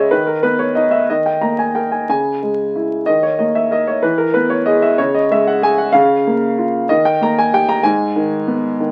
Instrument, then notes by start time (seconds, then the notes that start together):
grand piano
Already playing: C#3 G#3 G#4 C#5 D#5 E5
0.11 D#3 B4
0.27 A#4
0.43 B3 B4
0.59 C#5
0.75 D#4 D#5
0.91 E5
1.10 D#3 D#5
1.26 G5
1.41 A#3 A#5
1.59 G#5
1.75 A#4 G5
1.92 G#5
2.09 C#3 G#5
2.43 G#3
2.76 E4
3.06 D#3 D#5
3.23 C#5
3.39 A#3 D#5
3.55 E5
3.71 A#4 D#5
3.87 C#5
4.03 E3 B4
4.18 A#4
4.34 B3 B4
4.50 C#5
4.66 G#4 D#5
4.82 E5
4.98 C#3 C#5
5.14 D#5
5.31 G#3 E5
5.47 F#5
5.62 G#4 G#5
5.78 F#5
5.92 C#3 F5
6.27 A#3
6.58 F4
6.89 D#3 D#5
7.05 G5
7.21 A#3 A#5
7.38 G#5
7.53 G4 G5
7.69 A#5
7.83 G#2 G#5
8.16 D#3
8.47 B3
8.80 D#3